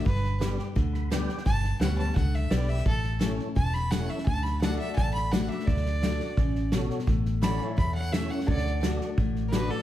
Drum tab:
HH |----p-------p---|----p-------p---|----p-------p---|----p-------p---|
SD |ooo-o-o-o-o-o-oo|o-o-o-o-o-o-o-oo|o-o-o-o-o-o-o-oo|o-o-o-o-o-o-o-oo|
BD |o-------o-------|o-------o-------|o-------o-------|o-------o-------|

HH |----p-------p---|----p-------p---|----p-------p---|
SD |ooo-o-o-o-o-o-oo|o-o-o-o-o-o-o-oo|ooo-o-o-o-o-o-o-|
BD |o-------o-------|o-------o-------|o-------o-------|